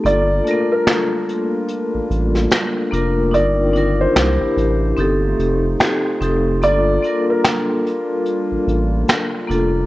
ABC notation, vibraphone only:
X:1
M:4/4
L:1/8
Q:"Swing 16ths" 1/4=73
K:Gm
V:1 name="Vibraphone"
[B,DFA] [A,B,DFB]3 z3 [B,DFB] | [DEFB] [DEFB] [D=EGB]2 [C_EGA]3 [CEGA] | [B,DFA] [B,DFB]3 z3 [B,DFA] |]